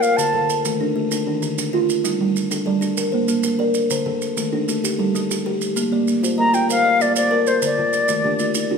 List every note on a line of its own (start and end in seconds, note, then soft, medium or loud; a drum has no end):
0.00 0.18 A#4 medium
0.00 0.19 D5 medium
0.00 0.18 F5 medium
0.00 maracas medium
0.17 0.49 D3 medium
0.17 0.64 A5 loud
0.17 maracas medium
0.33 0.65 D3 medium
0.33 0.80 A4 medium
0.50 maracas medium
0.65 1.11 D#3 medium
0.65 0.94 A3 medium
0.65 maracas medium
0.80 1.12 D4 medium
0.80 1.27 D#4 medium
0.80 1.27 A4 medium
0.96 1.27 A3 medium
1.11 1.58 D4 medium
1.11 1.58 D#4 medium
1.11 maracas medium
1.27 1.74 D#3 medium
1.27 1.57 D4 medium
1.42 1.73 D3 medium
1.42 maracas medium
1.58 2.05 D4 medium
1.58 maracas medium
1.73 2.04 D4 medium
1.73 2.05 F4 loud
1.89 maracas medium
2.04 2.36 G3 medium
2.04 2.36 D#4 medium
2.04 maracas medium
2.21 2.51 G3 medium
2.36 maracas medium
2.51 2.80 D4 medium
2.51 2.97 A4 medium
2.51 maracas medium
2.66 2.98 G3 medium
2.66 3.13 A4 medium
2.66 3.13 D5 medium
2.81 2.97 D4 medium
2.81 maracas medium
2.97 3.29 A4 medium
2.97 3.44 A#4 medium
2.97 maracas medium
3.12 3.44 A#3 medium
3.12 3.59 C5 medium
3.28 3.59 A#3 medium
3.28 maracas medium
3.43 3.91 A#4 medium
3.43 maracas medium
3.59 3.90 A#4 medium
3.59 3.91 D5 medium
3.74 maracas medium
3.90 4.21 D3 medium
3.90 4.22 C5 medium
3.90 maracas medium
4.06 4.37 D3 medium
4.06 4.52 A4 medium
4.22 maracas medium
4.37 4.83 D#3 medium
4.37 4.67 A3 medium
4.37 maracas medium
4.52 4.84 D4 medium
4.52 4.99 D#4 medium
4.52 4.99 A4 medium
4.68 4.84 A3 medium
4.68 maracas medium
4.84 5.15 D#4 medium
4.84 5.30 G4 medium
4.84 maracas medium
4.99 5.30 G3 medium
4.99 5.45 A4 medium
5.15 5.46 G3 medium
5.15 maracas medium
5.31 5.77 G4 medium
5.31 maracas medium
5.46 5.77 G4 medium
5.46 5.77 A#4 medium
5.61 maracas medium
5.76 6.07 A#3 medium
5.76 6.08 A4 medium
5.76 maracas medium
5.92 6.23 A#3 medium
5.92 6.39 D5 medium
6.08 maracas soft
6.23 6.52 F4 medium
6.23 6.69 C5 medium
6.23 maracas medium
6.38 6.70 A#3 medium
6.38 6.84 A#4 medium
6.38 6.83 D#5 medium
6.38 6.56 A#5 loud
6.53 6.85 F4 medium
6.53 6.70 G5 medium
6.53 maracas medium
6.69 7.16 A#4 medium
6.69 7.15 C5 medium
6.69 7.03 F5 loud
6.69 maracas medium
6.85 7.16 A#4 medium
6.85 7.31 D5 medium
6.85 7.31 D#5 medium
7.00 7.31 A#3 medium
7.00 7.16 D5 medium
7.00 maracas medium
7.15 7.61 C5 medium
7.15 7.62 D5 medium
7.15 7.49 D5 medium
7.15 maracas medium
7.31 7.62 A#4 medium
7.31 7.78 A#4 medium
7.31 7.63 D5 medium
7.47 7.63 C5 medium
7.47 maracas medium
7.62 7.93 D3 medium
7.62 7.94 C5 medium
7.62 8.78 D5 medium
7.62 maracas medium
7.77 8.09 D3 medium
7.77 8.24 F4 medium
7.93 maracas medium
8.08 8.56 D#3 medium
8.08 8.39 A3 medium
8.08 maracas medium
8.24 8.56 D3 medium
8.24 8.70 D4 medium
8.24 8.69 G4 medium
8.39 8.71 A3 medium
8.39 8.78 F4 medium
8.39 maracas medium
8.55 8.78 D#4 medium
8.55 maracas medium
8.71 8.78 D4 medium
8.71 8.78 F4 medium
8.71 8.78 G4 medium